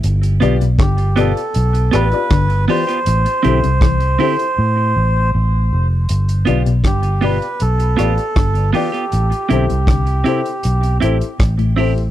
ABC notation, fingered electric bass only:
X:1
M:4/4
L:1/16
Q:1/4=79
K:Gmix
V:1 name="Fingered electric bass" clef=bass
G,,,2 B,,,2 G,,,3 z B,,,2 A,,, z G,,,2 z2 | A,,, z B,,, C,,3 z2 A,,2 A,,,2 A,,,2 F,,,2 | G,,,2 B,,,2 G,,,3 z B,,,2 A,,, z G,,,2 z2 | A,,, z B,,, C,,3 z2 B,,,2 A,,, z A,,,4 |]